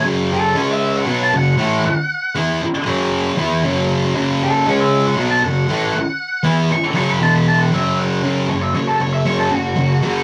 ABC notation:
X:1
M:4/4
L:1/16
Q:1/4=117
K:C#mix
V:1 name="Lead electric guitar"
z2 =A2 c =e2 f2 =a f6- | f2 z12 z2 | z2 =A2 c =e2 f2 =a f6- | f2 z2 c' z c' b =a b a f =e2 f2 |
z2 c =e c =A c e c A F6 |]
V:2 name="Distorted electric guitar" clef=bass
[F,,C,F,]4 [C,G,C]4 [B,,F,B,]2 [F,,C,]2 [=A,,=E,=A,]2 z2 | z2 [=E,B,=E]2 z2 [F,,C,F,]4 [E,B,E]2 [F,,C,F,]4 | [F,,C,F,]4 [C,G,C]4 [B,,F,B,]2 [F,,C,]2 [=A,,=E,=A,]2 z2 | z2 [=E,B,=E]2 z2 [F,,C,F,]2 [=E,,B,,E,]4 [F,,C,F,]4 |
[F,,C,F,]2 [F,,C,]2 [F,,C,]2 [F,,C,]2 [F,,C,F,]2 [F,,C,]2 [F,,C,]2 [F,,C,F,]2 |]